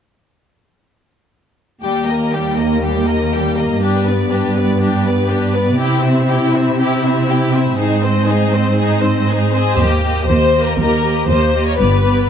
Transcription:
1.82 3.78 D#2 soft
1.82 2.05 G3 soft
1.82 3.78 A#3 soft
1.82 5.76 G4 soft
1.82 2.05 G4 soft
1.82 2.05 G5 soft
2.06 2.31 A#3 soft
2.06 2.32 A#4 soft
2.06 2.33 D#5 soft
2.31 2.57 G3 soft
2.31 2.58 G4 soft
2.31 2.57 G5 soft
2.57 2.82 A#3 soft
2.57 2.83 A#4 soft
2.57 2.83 D#5 soft
2.82 3.05 G3 soft
2.82 3.06 G4 soft
2.82 3.06 G5 soft
3.06 3.32 A#3 soft
3.06 3.33 A#4 soft
3.06 3.32 D#5 soft
3.32 3.57 G3 soft
3.32 3.58 G4 soft
3.32 3.58 G5 soft
3.56 3.82 A#3 soft
3.56 3.82 A#4 soft
3.56 3.82 D#5 soft
3.82 5.80 G2 soft
3.82 5.75 B3 soft
3.82 4.05 D4 soft
3.82 4.05 G4 soft
3.82 4.06 B4 soft
4.06 4.32 B3 soft
4.06 4.31 B4 soft
4.06 4.33 D5 soft
4.30 4.56 D4 soft
4.30 4.56 G4 soft
4.30 4.56 B4 soft
4.55 4.81 B3 soft
4.55 4.81 B4 soft
4.55 4.82 D5 soft
4.81 5.04 D4 soft
4.81 5.04 G4 soft
4.81 5.05 B4 soft
5.05 5.30 B3 soft
5.05 5.30 B4 soft
5.05 5.31 D5 soft
5.27 5.54 D4 soft
5.27 5.54 G4 soft
5.27 5.55 B4 soft
5.54 5.79 B3 soft
5.54 5.79 B4 soft
5.54 5.79 D5 soft
5.78 7.74 C3 soft
5.78 9.54 C4 soft
5.78 6.02 E4 soft
5.78 7.74 E4 soft
5.78 6.02 G4 soft
5.78 6.03 G5 soft
6.04 6.29 C4 soft
6.04 6.28 E4 soft
6.04 6.29 E5 soft
6.28 6.54 E4 soft
6.28 6.54 G4 soft
6.28 6.53 G5 soft
6.53 6.79 C4 soft
6.53 6.78 E4 soft
6.53 6.79 E5 soft
6.78 7.02 E4 soft
6.78 7.01 G4 soft
6.78 7.02 G5 soft
7.04 7.29 C4 soft
7.04 7.29 E4 soft
7.04 7.28 E5 soft
7.27 7.53 E4 soft
7.27 7.53 G4 soft
7.27 7.54 G5 soft
7.52 7.77 C4 soft
7.52 7.78 E4 soft
7.52 7.79 E5 soft
7.77 9.55 G#2 soft
7.77 8.00 D#4 soft
7.77 8.01 G#4 soft
7.77 8.01 C5 soft
7.81 9.55 D#4 soft
8.03 8.28 C4 soft
8.03 8.28 C5 soft
8.03 8.29 D#5 soft
8.27 8.52 D#4 soft
8.27 8.52 G#4 soft
8.27 8.53 C5 soft
8.52 8.78 C4 soft
8.52 8.77 C5 soft
8.52 8.79 D#5 soft
8.77 9.01 D#4 soft
8.77 9.00 G#4 soft
8.77 9.02 C5 soft
9.02 9.28 C4 soft
9.02 9.28 C5 soft
9.02 9.28 D#5 soft
9.28 9.54 D#4 soft
9.28 9.52 G#4 soft
9.28 9.55 C5 soft
9.53 9.79 C4 soft
9.53 9.77 G#4 soft
9.53 9.79 C5 soft
9.53 9.78 D#5 soft
9.78 10.21 D#2 soft
9.78 10.22 D#2 soft
9.78 10.03 A#3 soft
9.78 10.29 G4 soft
9.78 10.04 G4 soft
9.78 10.03 D#5 soft
10.04 10.27 A#3 soft
10.04 10.27 G4 soft
10.04 10.29 D#5 soft
10.28 10.71 D#2 soft
10.28 10.72 D#2 soft
10.28 10.53 A#3 soft
10.28 10.53 G4 soft
10.28 10.66 C5 medium
10.28 10.52 D#5 soft
10.53 10.78 A#3 soft
10.53 10.78 G4 soft
10.53 10.78 D#5 soft
10.66 10.78 A#4 soft
10.79 11.21 D#2 soft
10.79 11.03 A#3 soft
10.79 11.03 G4 soft
10.79 11.28 A#4 soft
10.79 11.03 D#5 soft
11.04 11.28 A#3 soft
11.04 11.29 G4 soft
11.04 11.28 D#5 soft
11.28 11.70 D#2 soft
11.28 11.71 D#2 soft
11.28 11.53 A#3 soft
11.28 11.53 G4 soft
11.28 11.65 C5 soft
11.28 11.52 D#5 soft
11.53 11.78 A#3 soft
11.53 11.77 G4 soft
11.53 11.78 D#5 soft
11.67 11.79 C#5 soft
11.78 12.21 G1 soft
11.78 12.21 G2 soft
11.78 12.02 B3 soft
11.78 12.03 G4 soft
11.78 12.27 B4 medium
11.78 12.03 D5 soft
12.03 12.27 B3 soft
12.03 12.28 G4 soft
12.03 12.28 D5 soft

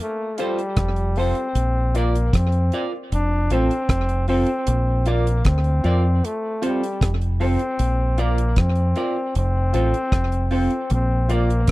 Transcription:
0.02 0.42 A3 medium
0.38 1.20 G3 medium
0.38 0.56 F4 loud
0.38 0.58 F4 loud
0.38 0.56 A4 medium
0.38 0.59 A4 loud
0.38 0.57 C5 loud
0.38 0.59 C5 loud
0.38 closed hi-hat medium
0.59 closed hi-hat medium
0.77 1.32 F1 medium
0.77 kick loud
0.77 cross-stick loud
0.77 closed hi-hat loud
0.96 closed hi-hat medium
1.16 1.99 C4 loud
1.16 1.34 F4 loud
1.16 1.36 F4 medium
1.16 1.35 A4 medium
1.16 1.37 A4 medium
1.16 1.35 C5 loud
1.16 1.37 C5 medium
1.16 open hi-hat medium
1.35 closed hi-hat medium
1.55 2.29 A#1 loud
1.55 closed hi-hat medium
1.94 2.37 A#3 medium
1.94 2.12 F4 medium
1.94 2.14 F4 medium
1.94 2.13 A#4 medium
1.94 2.15 A#4 medium
1.94 2.13 D5 loud
1.94 2.15 D5 loud
1.94 closed hi-hat medium
2.15 closed hi-hat medium
2.33 2.70 F2 loud
2.33 2.85 C4 loud
2.33 kick loud
2.33 cross-stick loud
2.33 closed hi-hat loud
2.52 closed hi-hat soft
2.72 2.90 F4 medium
2.72 2.92 F4 medium
2.72 2.92 A#4 medium
2.72 2.91 A#4 medium
2.72 2.92 D5 loud
2.72 2.91 D5 medium
2.72 closed hi-hat medium
2.93 muted clean electric guitar stroke soft
3.12 3.48 F1 medium
3.12 3.55 D4 loud
3.12 closed hi-hat medium
3.50 3.68 A1 medium
3.50 3.70 C4 medium
3.50 4.29 C4 loud
3.50 3.68 F4 medium
3.50 3.70 F4 medium
3.50 3.69 A4 medium
3.50 3.71 A4 medium
3.50 3.69 C5 loud
3.50 closed hi-hat medium
3.71 closed hi-hat medium
3.89 4.44 F1 medium
3.89 kick medium
3.89 cross-stick loud
3.89 closed hi-hat loud
4.09 closed hi-hat medium
4.28 4.48 C4 medium
4.28 5.10 C4 loud
4.28 4.46 F4 loud
4.28 4.48 F4 medium
4.28 4.46 A4 medium
4.28 4.48 A4 loud
4.28 4.47 C5 loud
4.28 open hi-hat medium
4.47 closed hi-hat medium
4.67 5.41 A#1 loud
4.67 closed hi-hat loud
5.06 5.49 A#3 medium
5.06 5.24 F4 medium
5.06 5.26 F4 medium
5.06 5.24 A#4 medium
5.06 5.26 A#4 medium
5.06 5.25 D5 loud
5.06 5.26 D5 loud
5.06 closed hi-hat medium
5.27 closed hi-hat medium
5.45 5.81 D2 loud
5.45 6.27 C4 loud
5.45 kick loud
5.45 cross-stick loud
5.45 closed hi-hat loud
5.64 closed hi-hat soft
5.84 6.20 F2 medium
5.84 6.02 F4 medium
5.84 6.03 F4 medium
5.84 6.04 A#4 medium
5.84 6.02 A#4 medium
5.84 6.03 D5 loud
5.84 closed hi-hat medium
6.25 6.63 A3 medium
6.25 closed hi-hat medium
6.62 6.81 C4 medium
6.62 6.80 F4 loud
6.62 6.82 F4 medium
6.62 6.80 A4 medium
6.62 6.82 A4 medium
6.62 6.80 C5 loud
6.62 closed hi-hat medium
6.67 7.12 G3 loud
6.83 closed hi-hat medium
7.01 7.56 F1 medium
7.01 kick medium
7.01 cross-stick loud
7.01 closed hi-hat loud
7.22 closed hi-hat medium
7.40 7.59 C4 medium
7.40 8.23 C4 loud
7.40 7.58 F4 medium
7.40 7.60 F4 medium
7.40 7.58 A4 medium
7.40 7.60 A4 loud
7.40 7.59 C5 loud
7.40 open hi-hat medium
7.59 closed hi-hat medium
7.79 8.53 A#1 loud
7.79 closed hi-hat medium
8.18 8.62 A#3 medium
8.18 8.36 F4 loud
8.18 8.37 F4 medium
8.18 8.36 A#4 medium
8.18 8.38 A#4 medium
8.18 8.36 D5 loud
8.18 8.38 D5 medium
8.18 closed hi-hat medium
8.38 closed hi-hat medium
8.56 8.93 F2 loud
8.56 9.36 C4 medium
8.56 kick medium
8.56 cross-stick loud
8.56 closed hi-hat medium
8.76 closed hi-hat soft
8.96 9.14 F4 medium
8.96 9.15 F4 medium
8.96 9.14 A#4 medium
8.96 9.16 A#4 medium
8.96 9.14 D5 medium
8.96 9.15 D5 medium
8.96 closed hi-hat medium
9.16 muted clean electric guitar stroke soft
9.35 9.71 F1 loud
9.35 10.49 C4 loud
9.35 closed hi-hat medium
9.73 9.92 A1 medium
9.73 9.93 C4 medium
9.73 9.91 F4 medium
9.73 9.94 F4 loud
9.73 9.92 A4 medium
9.73 9.94 A4 medium
9.73 9.92 C5 loud
9.73 closed hi-hat medium
9.94 closed hi-hat soft
10.12 10.67 F1 medium
10.12 kick loud
10.12 cross-stick loud
10.12 closed hi-hat medium
10.32 closed hi-hat medium
10.51 10.71 C4 medium
10.51 10.69 F4 medium
10.51 10.71 F4 medium
10.51 10.70 A4 medium
10.51 10.71 A4 medium
10.51 10.70 C5 loud
10.51 open hi-hat medium
10.55 10.90 C4 loud
10.70 closed hi-hat medium
10.90 11.65 A#1 loud
10.90 closed hi-hat loud
10.94 11.35 C4 loud
11.29 11.47 F4 medium
11.29 11.49 F4 medium
11.29 11.47 A#4 medium
11.29 11.49 A#4 medium
11.29 11.48 D5 loud
11.29 11.49 D5 medium
11.29 closed hi-hat medium
11.33 11.70 A#3 medium
11.50 closed hi-hat medium
11.67 kick medium
11.67 closed hi-hat loud

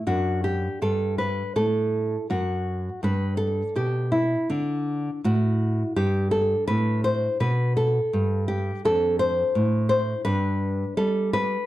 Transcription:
0.07 0.67 F#2 medium
0.07 3.00 D4 soft
0.07 0.43 F#4 medium
0.44 0.80 G4 medium
0.82 1.42 G2 medium
0.82 1.18 A4 medium
1.18 1.55 B4 medium
1.56 2.15 A2 medium
1.56 2.27 A4 medium
2.30 2.88 F#2 medium
2.30 3.00 F#4 medium
3.03 3.61 G2 medium
3.03 4.45 D4 soft
3.03 3.37 B4 medium
3.37 3.73 A4 medium
3.76 4.35 B2 medium
3.76 4.11 G4 medium
4.12 4.47 E4 medium
4.50 5.09 D3 medium
4.50 5.21 D4 medium
5.24 5.82 A2 medium
5.24 5.94 F#4 medium
5.96 6.54 G2 medium
5.96 8.80 D4 soft
5.96 6.30 G4 medium
6.31 6.66 A4 medium
6.67 7.26 A2 medium
6.67 7.03 B4 medium
7.04 7.39 C5 medium
7.40 7.98 B2 medium
7.40 7.75 B4 medium
7.77 8.46 A4 medium
8.13 8.70 G2 medium
8.48 8.82 G4 medium
8.85 9.42 F2 medium
8.85 10.24 D4 soft
8.85 9.19 A4 medium
9.19 9.88 C5 medium
9.55 10.13 A2 medium
9.89 10.24 C5 medium
10.25 10.83 G2 medium
10.25 11.66 D4 soft
10.25 10.95 B4 medium
10.97 11.56 G3 medium
10.97 11.32 A4 medium
11.33 11.66 B4 medium

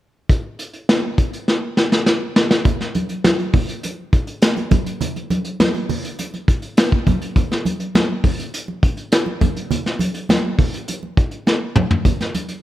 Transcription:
0.29 kick medium
0.29 closed hi-hat medium
0.59 closed hi-hat medium
0.73 closed hi-hat soft
0.89 snare loud
1.18 kick medium
1.18 closed hi-hat medium
1.33 closed hi-hat soft
1.48 snare soft
1.77 snare medium
1.92 snare medium
2.06 snare medium
2.36 snare medium
2.51 snare medium
2.65 kick loud
2.65 closed hi-hat medium
2.65 low conga medium
2.80 snare soft
2.80 closed hi-hat soft
2.95 closed hi-hat medium
2.95 high conga medium
3.09 closed hi-hat medium
3.24 snare loud
3.24 closed hi-hat medium
3.24 muted conga soft
3.24 high conga medium
3.39 closed hi-hat soft
3.53 kick loud
3.53 open hi-hat medium
3.53 low conga medium
3.69 closed hi-hat soft
3.83 closed hi-hat loud
3.83 muted conga soft
4.13 kick medium
4.13 closed hi-hat medium
4.27 closed hi-hat medium
4.42 snare loud
4.42 closed hi-hat medium
4.57 closed hi-hat soft
4.57 muted conga soft
4.71 kick medium
4.71 closed hi-hat medium
4.71 high conga medium
4.71 low conga medium
4.86 closed hi-hat medium
5.01 closed hi-hat medium
5.01 low conga medium
5.16 closed hi-hat soft
5.16 muted conga soft
5.30 closed hi-hat medium
5.30 high conga medium
5.44 closed hi-hat medium
5.60 snare loud
5.60 closed hi-hat medium
5.60 muted conga soft
5.60 high conga medium
5.74 closed hi-hat soft
5.74 muted conga soft
5.89 open hi-hat medium
5.89 low conga medium
6.04 closed hi-hat soft
6.19 closed hi-hat medium
6.19 muted conga soft
6.34 closed hi-hat soft
6.34 muted conga soft
6.48 kick medium
6.48 closed hi-hat medium
6.62 closed hi-hat medium
6.77 snare loud
6.77 closed hi-hat medium
6.77 muted conga soft
6.92 kick medium
6.92 closed hi-hat soft
7.06 kick medium
7.06 closed hi-hat medium
7.06 high conga medium
7.06 low conga medium
7.22 closed hi-hat medium
7.36 kick loud
7.36 closed hi-hat medium
7.36 low conga medium
7.52 snare soft
7.52 muted conga soft
7.65 closed hi-hat medium
7.65 high conga medium
7.80 closed hi-hat soft
7.95 snare loud
7.95 closed hi-hat medium
7.95 high conga medium
8.24 kick medium
8.24 open hi-hat medium
8.24 low conga medium
8.39 closed hi-hat medium
8.54 closed hi-hat medium
8.68 muted conga soft
8.83 kick medium
8.83 closed hi-hat medium
8.97 closed hi-hat soft
9.12 snare loud
9.12 closed hi-hat loud
9.26 muted conga soft
9.41 kick medium
9.41 closed hi-hat medium
9.41 high conga medium
9.41 low conga medium
9.56 closed hi-hat medium
9.71 closed hi-hat medium
9.71 low conga medium
9.86 snare soft
9.86 closed hi-hat soft
9.99 closed hi-hat medium
9.99 high conga medium
10.14 closed hi-hat soft
10.29 snare loud
10.29 closed hi-hat medium
10.29 muted conga soft
10.29 high conga medium
10.59 kick medium
10.59 open hi-hat medium
10.59 low conga medium
10.74 closed hi-hat soft
10.88 closed hi-hat loud
10.88 muted conga soft
11.03 muted conga soft
11.17 kick medium
11.17 closed hi-hat medium
11.31 closed hi-hat soft
11.47 snare medium
11.47 muted conga soft
11.76 mid tom medium
11.76 high conga medium
11.76 low conga medium
11.91 floor tom medium
12.05 kick medium
12.05 closed hi-hat medium
12.05 muted conga soft
12.05 low conga medium
12.20 snare soft
12.20 closed hi-hat soft
12.20 muted conga soft
12.34 closed hi-hat medium
12.34 high conga medium
12.49 closed hi-hat soft

